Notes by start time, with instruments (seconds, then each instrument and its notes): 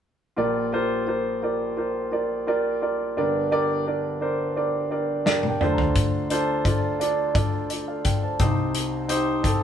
0.36 grand piano A#1 A#2 F4 G4 A#4 D5
0.72 grand piano F4 G4 A#4 C5
1.07 grand piano F4 G4 A#4 C5
1.42 grand piano F4 G4 A#4 D5
1.77 grand piano F4 G4 A#4 C5
2.11 grand piano F4 G4 A#4 D5
2.47 grand piano F4 G4 A#4 D5
2.81 grand piano F4 G4 A#4 D5
3.17 grand piano G1 G2 D4 G4 A#4 D5
3.51 grand piano D4 G4 A#4 D5
3.86 grand piano D4 G4 A#4 D5
4.21 grand piano D4 G4 A#4 C5
4.56 grand piano D4 G4 A#4 D5
4.91 grand piano D4 G4 A#4 D5
5.25 grand piano D4 G4 A#4 D5 F5, snare
5.43 high tom
5.50 grand piano G5
5.60 grand piano D2 D3 D4 F4 A4 C5, mid tom
5.73 grand piano A#5
5.78 floor tom
5.96 kick, closed hi-hat
6.30 grand piano D4 F4 A4 C5, closed hi-hat
6.65 grand piano D4 F4 A4 D5, kick, closed hi-hat
7.00 grand piano D4 F4 A4 D5, closed hi-hat
7.34 grand piano D4 F4 A4 D5, kick, closed hi-hat
7.70 grand piano F4 D5, closed hi-hat
7.88 grand piano A4 F5
8.05 grand piano G5, kick, closed hi-hat
8.23 grand piano C5 A5
8.39 grand piano C2 C3 C4 D#4 G4 C5, kick, closed hi-hat
8.75 closed hi-hat
9.08 grand piano C4 D#4 G4 C5, closed hi-hat
9.43 grand piano C4 D#4 G4 A4, kick, closed hi-hat